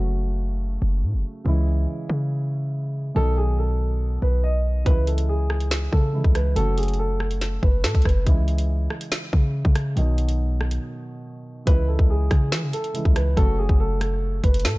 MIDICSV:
0, 0, Header, 1, 5, 480
1, 0, Start_track
1, 0, Key_signature, 4, "minor"
1, 0, Tempo, 425532
1, 1643, Time_signature, 4, 2, 24, 8
1, 16675, End_track
2, 0, Start_track
2, 0, Title_t, "Grand piano"
2, 0, Program_c, 0, 0
2, 3565, Note_on_c, 0, 69, 118
2, 3783, Note_off_c, 0, 69, 0
2, 3805, Note_on_c, 0, 68, 85
2, 4023, Note_off_c, 0, 68, 0
2, 4044, Note_on_c, 0, 69, 86
2, 4721, Note_off_c, 0, 69, 0
2, 4765, Note_on_c, 0, 71, 79
2, 4983, Note_off_c, 0, 71, 0
2, 5004, Note_on_c, 0, 75, 83
2, 5455, Note_off_c, 0, 75, 0
2, 5482, Note_on_c, 0, 71, 103
2, 5701, Note_off_c, 0, 71, 0
2, 5722, Note_on_c, 0, 69, 73
2, 5941, Note_off_c, 0, 69, 0
2, 5967, Note_on_c, 0, 68, 75
2, 6642, Note_off_c, 0, 68, 0
2, 6683, Note_on_c, 0, 69, 83
2, 7135, Note_off_c, 0, 69, 0
2, 7163, Note_on_c, 0, 71, 78
2, 7382, Note_off_c, 0, 71, 0
2, 7400, Note_on_c, 0, 69, 113
2, 7620, Note_off_c, 0, 69, 0
2, 7644, Note_on_c, 0, 68, 81
2, 7862, Note_off_c, 0, 68, 0
2, 7886, Note_on_c, 0, 69, 91
2, 8562, Note_off_c, 0, 69, 0
2, 8602, Note_on_c, 0, 71, 78
2, 8822, Note_off_c, 0, 71, 0
2, 8847, Note_on_c, 0, 69, 77
2, 9064, Note_off_c, 0, 69, 0
2, 9080, Note_on_c, 0, 71, 76
2, 9300, Note_off_c, 0, 71, 0
2, 13164, Note_on_c, 0, 71, 105
2, 13382, Note_off_c, 0, 71, 0
2, 13405, Note_on_c, 0, 69, 74
2, 13623, Note_off_c, 0, 69, 0
2, 13650, Note_on_c, 0, 68, 75
2, 14324, Note_off_c, 0, 68, 0
2, 14365, Note_on_c, 0, 69, 87
2, 14815, Note_off_c, 0, 69, 0
2, 14843, Note_on_c, 0, 71, 77
2, 15062, Note_off_c, 0, 71, 0
2, 15080, Note_on_c, 0, 69, 112
2, 15300, Note_off_c, 0, 69, 0
2, 15324, Note_on_c, 0, 68, 81
2, 15542, Note_off_c, 0, 68, 0
2, 15567, Note_on_c, 0, 69, 91
2, 16242, Note_off_c, 0, 69, 0
2, 16282, Note_on_c, 0, 71, 83
2, 16501, Note_off_c, 0, 71, 0
2, 16529, Note_on_c, 0, 69, 76
2, 16675, Note_off_c, 0, 69, 0
2, 16675, End_track
3, 0, Start_track
3, 0, Title_t, "Grand piano"
3, 0, Program_c, 1, 0
3, 0, Control_c, 1, 64, 127
3, 0, Note_on_c, 1, 49, 67
3, 0, Note_on_c, 1, 54, 59
3, 0, Note_on_c, 1, 57, 64
3, 0, Note_on_c, 1, 66, 74
3, 1598, Note_off_c, 1, 49, 0
3, 1604, Note_off_c, 1, 54, 0
3, 1610, Note_off_c, 1, 57, 0
3, 1616, Note_off_c, 1, 66, 0
3, 1630, Note_on_c, 1, 49, 69
3, 1642, Note_on_c, 1, 52, 64
3, 1653, Note_on_c, 1, 56, 64
3, 1660, Control_c, 1, 64, 0
3, 1665, Note_on_c, 1, 64, 76
3, 1839, Control_c, 1, 64, 127
3, 3518, Note_off_c, 1, 49, 0
3, 3524, Note_off_c, 1, 52, 0
3, 3530, Note_off_c, 1, 56, 0
3, 3536, Note_off_c, 1, 64, 0
3, 3548, Note_on_c, 1, 47, 70
3, 3561, Note_on_c, 1, 51, 65
3, 3572, Note_on_c, 1, 54, 63
3, 3575, Control_c, 1, 64, 0
3, 3584, Note_on_c, 1, 63, 75
3, 3767, Control_c, 1, 64, 127
3, 5438, Note_off_c, 1, 47, 0
3, 5444, Note_off_c, 1, 51, 0
3, 5450, Note_off_c, 1, 54, 0
3, 5456, Note_off_c, 1, 63, 0
3, 5468, Note_on_c, 1, 49, 63
3, 5479, Note_on_c, 1, 52, 59
3, 5491, Note_on_c, 1, 56, 64
3, 5497, Control_c, 1, 64, 0
3, 5503, Note_on_c, 1, 64, 78
3, 5710, Control_c, 1, 64, 127
3, 6887, Note_off_c, 1, 49, 0
3, 6893, Note_off_c, 1, 52, 0
3, 6899, Note_off_c, 1, 56, 0
3, 6905, Note_off_c, 1, 64, 0
3, 6912, Note_on_c, 1, 49, 50
3, 6917, Note_on_c, 1, 52, 48
3, 6923, Note_on_c, 1, 56, 50
3, 6929, Note_on_c, 1, 64, 58
3, 7372, Note_off_c, 1, 49, 0
3, 7389, Note_on_c, 1, 49, 66
3, 7400, Note_on_c, 1, 54, 60
3, 7401, Note_off_c, 1, 52, 0
3, 7403, Note_off_c, 1, 56, 0
3, 7406, Note_off_c, 1, 64, 0
3, 7413, Note_on_c, 1, 57, 64
3, 7419, Control_c, 1, 64, 0
3, 7424, Note_on_c, 1, 66, 73
3, 7614, Control_c, 1, 64, 127
3, 9278, Note_off_c, 1, 49, 0
3, 9284, Note_off_c, 1, 54, 0
3, 9290, Note_off_c, 1, 57, 0
3, 9296, Note_off_c, 1, 66, 0
3, 9310, Note_on_c, 1, 49, 68
3, 9322, Note_on_c, 1, 52, 63
3, 9334, Note_on_c, 1, 56, 65
3, 9340, Control_c, 1, 64, 0
3, 9346, Note_on_c, 1, 64, 77
3, 9561, Control_c, 1, 64, 127
3, 11198, Note_off_c, 1, 49, 0
3, 11204, Note_off_c, 1, 52, 0
3, 11210, Note_off_c, 1, 56, 0
3, 11217, Note_off_c, 1, 64, 0
3, 11229, Note_on_c, 1, 47, 70
3, 11240, Note_on_c, 1, 51, 65
3, 11252, Note_on_c, 1, 54, 62
3, 11259, Control_c, 1, 64, 0
3, 11264, Note_on_c, 1, 63, 74
3, 11448, Control_c, 1, 64, 127
3, 13118, Note_off_c, 1, 47, 0
3, 13124, Note_off_c, 1, 51, 0
3, 13130, Note_off_c, 1, 54, 0
3, 13136, Note_off_c, 1, 63, 0
3, 13147, Note_on_c, 1, 49, 64
3, 13159, Note_on_c, 1, 52, 60
3, 13171, Note_on_c, 1, 56, 63
3, 13177, Control_c, 1, 64, 0
3, 13183, Note_on_c, 1, 64, 79
3, 13361, Control_c, 1, 64, 127
3, 14567, Note_off_c, 1, 49, 0
3, 14573, Note_off_c, 1, 52, 0
3, 14578, Note_off_c, 1, 56, 0
3, 14585, Note_off_c, 1, 64, 0
3, 14592, Note_on_c, 1, 49, 53
3, 14598, Note_on_c, 1, 52, 50
3, 14604, Note_on_c, 1, 56, 49
3, 14610, Note_on_c, 1, 64, 59
3, 15054, Note_off_c, 1, 49, 0
3, 15071, Note_on_c, 1, 49, 67
3, 15081, Note_off_c, 1, 52, 0
3, 15082, Note_on_c, 1, 54, 59
3, 15084, Note_off_c, 1, 56, 0
3, 15087, Note_off_c, 1, 64, 0
3, 15094, Note_on_c, 1, 57, 66
3, 15098, Control_c, 1, 64, 0
3, 15106, Note_on_c, 1, 66, 77
3, 15315, Control_c, 1, 64, 127
3, 16675, Note_off_c, 1, 49, 0
3, 16675, Note_off_c, 1, 54, 0
3, 16675, Note_off_c, 1, 57, 0
3, 16675, Note_off_c, 1, 66, 0
3, 16675, End_track
4, 0, Start_track
4, 0, Title_t, "808-style bass"
4, 0, Program_c, 2, 38
4, 0, Note_on_c, 2, 30, 113
4, 878, Note_off_c, 2, 30, 0
4, 923, Note_on_c, 2, 30, 107
4, 1163, Note_on_c, 2, 45, 95
4, 1180, Note_off_c, 2, 30, 0
4, 1283, Note_on_c, 2, 30, 101
4, 1300, Note_off_c, 2, 45, 0
4, 1397, Note_off_c, 2, 30, 0
4, 1643, Note_on_c, 2, 37, 112
4, 2104, Note_off_c, 2, 37, 0
4, 2363, Note_on_c, 2, 49, 106
4, 3518, Note_off_c, 2, 49, 0
4, 3563, Note_on_c, 2, 35, 116
4, 4718, Note_off_c, 2, 35, 0
4, 4763, Note_on_c, 2, 35, 102
4, 5455, Note_off_c, 2, 35, 0
4, 5483, Note_on_c, 2, 37, 112
4, 6639, Note_off_c, 2, 37, 0
4, 6684, Note_on_c, 2, 49, 100
4, 7029, Note_off_c, 2, 49, 0
4, 7044, Note_on_c, 2, 37, 101
4, 7389, Note_off_c, 2, 37, 0
4, 7403, Note_on_c, 2, 30, 108
4, 8558, Note_off_c, 2, 30, 0
4, 8604, Note_on_c, 2, 30, 107
4, 8844, Note_on_c, 2, 45, 92
4, 8861, Note_off_c, 2, 30, 0
4, 8958, Note_off_c, 2, 45, 0
4, 8964, Note_on_c, 2, 37, 102
4, 9079, Note_off_c, 2, 37, 0
4, 9085, Note_on_c, 2, 30, 104
4, 9315, Note_off_c, 2, 30, 0
4, 9324, Note_on_c, 2, 37, 110
4, 10015, Note_off_c, 2, 37, 0
4, 10524, Note_on_c, 2, 49, 102
4, 10870, Note_off_c, 2, 49, 0
4, 10884, Note_on_c, 2, 49, 107
4, 11229, Note_off_c, 2, 49, 0
4, 11245, Note_on_c, 2, 35, 110
4, 12166, Note_off_c, 2, 35, 0
4, 13164, Note_on_c, 2, 37, 109
4, 13509, Note_off_c, 2, 37, 0
4, 13525, Note_on_c, 2, 37, 103
4, 13870, Note_off_c, 2, 37, 0
4, 13883, Note_on_c, 2, 49, 113
4, 14124, Note_on_c, 2, 52, 101
4, 14141, Note_off_c, 2, 49, 0
4, 14244, Note_on_c, 2, 49, 103
4, 14261, Note_off_c, 2, 52, 0
4, 14358, Note_off_c, 2, 49, 0
4, 14723, Note_on_c, 2, 37, 103
4, 15069, Note_off_c, 2, 37, 0
4, 15084, Note_on_c, 2, 30, 117
4, 15429, Note_off_c, 2, 30, 0
4, 15445, Note_on_c, 2, 30, 102
4, 16251, Note_off_c, 2, 30, 0
4, 16284, Note_on_c, 2, 30, 107
4, 16524, Note_on_c, 2, 45, 94
4, 16541, Note_off_c, 2, 30, 0
4, 16661, Note_off_c, 2, 45, 0
4, 16675, End_track
5, 0, Start_track
5, 0, Title_t, "Drums"
5, 5483, Note_on_c, 9, 42, 76
5, 5484, Note_on_c, 9, 36, 119
5, 5596, Note_off_c, 9, 36, 0
5, 5596, Note_off_c, 9, 42, 0
5, 5723, Note_on_c, 9, 42, 67
5, 5835, Note_off_c, 9, 42, 0
5, 5842, Note_on_c, 9, 42, 72
5, 5955, Note_off_c, 9, 42, 0
5, 6204, Note_on_c, 9, 37, 87
5, 6317, Note_off_c, 9, 37, 0
5, 6322, Note_on_c, 9, 42, 74
5, 6435, Note_off_c, 9, 42, 0
5, 6443, Note_on_c, 9, 42, 73
5, 6444, Note_on_c, 9, 38, 105
5, 6555, Note_off_c, 9, 42, 0
5, 6557, Note_off_c, 9, 38, 0
5, 6684, Note_on_c, 9, 36, 91
5, 6797, Note_off_c, 9, 36, 0
5, 7043, Note_on_c, 9, 36, 102
5, 7156, Note_off_c, 9, 36, 0
5, 7163, Note_on_c, 9, 42, 84
5, 7164, Note_on_c, 9, 37, 91
5, 7276, Note_off_c, 9, 42, 0
5, 7277, Note_off_c, 9, 37, 0
5, 7403, Note_on_c, 9, 42, 78
5, 7516, Note_off_c, 9, 42, 0
5, 7643, Note_on_c, 9, 42, 69
5, 7703, Note_off_c, 9, 42, 0
5, 7703, Note_on_c, 9, 42, 58
5, 7763, Note_off_c, 9, 42, 0
5, 7763, Note_on_c, 9, 42, 55
5, 7823, Note_off_c, 9, 42, 0
5, 7823, Note_on_c, 9, 42, 45
5, 7936, Note_off_c, 9, 42, 0
5, 8124, Note_on_c, 9, 37, 83
5, 8237, Note_off_c, 9, 37, 0
5, 8242, Note_on_c, 9, 42, 73
5, 8355, Note_off_c, 9, 42, 0
5, 8363, Note_on_c, 9, 42, 72
5, 8364, Note_on_c, 9, 38, 60
5, 8475, Note_off_c, 9, 42, 0
5, 8477, Note_off_c, 9, 38, 0
5, 8604, Note_on_c, 9, 36, 93
5, 8717, Note_off_c, 9, 36, 0
5, 8844, Note_on_c, 9, 38, 111
5, 8844, Note_on_c, 9, 42, 85
5, 8957, Note_off_c, 9, 38, 0
5, 8957, Note_off_c, 9, 42, 0
5, 8963, Note_on_c, 9, 42, 45
5, 8964, Note_on_c, 9, 36, 101
5, 9044, Note_off_c, 9, 42, 0
5, 9044, Note_on_c, 9, 42, 62
5, 9076, Note_off_c, 9, 36, 0
5, 9084, Note_on_c, 9, 37, 91
5, 9085, Note_on_c, 9, 36, 95
5, 9124, Note_off_c, 9, 42, 0
5, 9124, Note_on_c, 9, 42, 72
5, 9197, Note_off_c, 9, 36, 0
5, 9197, Note_off_c, 9, 37, 0
5, 9237, Note_off_c, 9, 42, 0
5, 9324, Note_on_c, 9, 36, 117
5, 9324, Note_on_c, 9, 42, 76
5, 9436, Note_off_c, 9, 42, 0
5, 9437, Note_off_c, 9, 36, 0
5, 9564, Note_on_c, 9, 42, 69
5, 9676, Note_off_c, 9, 42, 0
5, 9683, Note_on_c, 9, 42, 73
5, 9796, Note_off_c, 9, 42, 0
5, 10044, Note_on_c, 9, 37, 87
5, 10157, Note_off_c, 9, 37, 0
5, 10162, Note_on_c, 9, 42, 74
5, 10275, Note_off_c, 9, 42, 0
5, 10283, Note_on_c, 9, 42, 72
5, 10285, Note_on_c, 9, 38, 103
5, 10396, Note_off_c, 9, 42, 0
5, 10397, Note_off_c, 9, 38, 0
5, 10524, Note_on_c, 9, 36, 96
5, 10637, Note_off_c, 9, 36, 0
5, 10884, Note_on_c, 9, 36, 101
5, 10996, Note_off_c, 9, 36, 0
5, 11003, Note_on_c, 9, 42, 84
5, 11004, Note_on_c, 9, 37, 94
5, 11116, Note_off_c, 9, 37, 0
5, 11116, Note_off_c, 9, 42, 0
5, 11243, Note_on_c, 9, 42, 75
5, 11356, Note_off_c, 9, 42, 0
5, 11483, Note_on_c, 9, 42, 66
5, 11596, Note_off_c, 9, 42, 0
5, 11602, Note_on_c, 9, 42, 71
5, 11715, Note_off_c, 9, 42, 0
5, 11964, Note_on_c, 9, 37, 86
5, 12077, Note_off_c, 9, 37, 0
5, 12083, Note_on_c, 9, 42, 73
5, 12195, Note_off_c, 9, 42, 0
5, 13163, Note_on_c, 9, 42, 77
5, 13164, Note_on_c, 9, 36, 119
5, 13276, Note_off_c, 9, 42, 0
5, 13277, Note_off_c, 9, 36, 0
5, 13525, Note_on_c, 9, 36, 100
5, 13637, Note_off_c, 9, 36, 0
5, 13883, Note_on_c, 9, 36, 100
5, 13883, Note_on_c, 9, 42, 77
5, 13884, Note_on_c, 9, 37, 89
5, 13996, Note_off_c, 9, 36, 0
5, 13996, Note_off_c, 9, 42, 0
5, 13997, Note_off_c, 9, 37, 0
5, 14124, Note_on_c, 9, 38, 107
5, 14237, Note_off_c, 9, 38, 0
5, 14363, Note_on_c, 9, 42, 85
5, 14476, Note_off_c, 9, 42, 0
5, 14484, Note_on_c, 9, 42, 72
5, 14597, Note_off_c, 9, 42, 0
5, 14604, Note_on_c, 9, 42, 84
5, 14717, Note_off_c, 9, 42, 0
5, 14724, Note_on_c, 9, 36, 101
5, 14836, Note_off_c, 9, 36, 0
5, 14844, Note_on_c, 9, 37, 95
5, 14844, Note_on_c, 9, 42, 84
5, 14956, Note_off_c, 9, 42, 0
5, 14957, Note_off_c, 9, 37, 0
5, 15083, Note_on_c, 9, 42, 77
5, 15084, Note_on_c, 9, 36, 120
5, 15196, Note_off_c, 9, 42, 0
5, 15197, Note_off_c, 9, 36, 0
5, 15445, Note_on_c, 9, 36, 99
5, 15557, Note_off_c, 9, 36, 0
5, 15804, Note_on_c, 9, 42, 79
5, 15805, Note_on_c, 9, 37, 88
5, 15917, Note_off_c, 9, 42, 0
5, 15918, Note_off_c, 9, 37, 0
5, 16284, Note_on_c, 9, 36, 97
5, 16284, Note_on_c, 9, 42, 84
5, 16397, Note_off_c, 9, 36, 0
5, 16397, Note_off_c, 9, 42, 0
5, 16404, Note_on_c, 9, 42, 76
5, 16464, Note_off_c, 9, 42, 0
5, 16464, Note_on_c, 9, 42, 65
5, 16524, Note_off_c, 9, 42, 0
5, 16524, Note_on_c, 9, 38, 112
5, 16524, Note_on_c, 9, 42, 52
5, 16583, Note_off_c, 9, 42, 0
5, 16583, Note_on_c, 9, 42, 43
5, 16637, Note_off_c, 9, 38, 0
5, 16675, Note_off_c, 9, 42, 0
5, 16675, End_track
0, 0, End_of_file